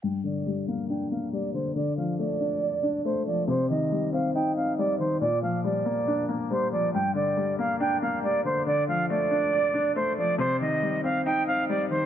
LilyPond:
<<
  \new Staff \with { instrumentName = "Flute" } { \time 4/4 \key g \minor \tempo 4 = 139 g''8 d''4 f''8 g''8 f''8 d''8 c''8 | d''8 f''8 d''2 c''8 d''8 | c''8 ees''4 f''8 g''8 f''8 d''8 c''8 | d''8 f''8 d''2 c''8 d''8 |
g''8 d''4 f''8 g''8 f''8 d''8 c''8 | d''8 f''8 d''2 c''8 d''8 | c''8 ees''4 f''8 g''8 f''8 d''8 c''8 | }
  \new Staff \with { instrumentName = "Grand piano" } { \clef bass \time 4/4 \key g \minor g,8 d8 g8 bes8 d'8 bes8 g8 d8 | d8 f8 a8 d'8 d''8 d'8 a8 f8 | c8 ees8 g8 c'8 ees'8 c'8 g8 ees8 | bes,8 f8 g8 bes8 d'8 bes8 g8 f8 |
g,8 d8 g8 bes8 d'8 bes8 g8 d8 | d8 f8 a8 d'8 d''8 d'8 a8 f8 | c8 ees8 g8 c'8 ees'8 c'8 g8 ees8 | }
>>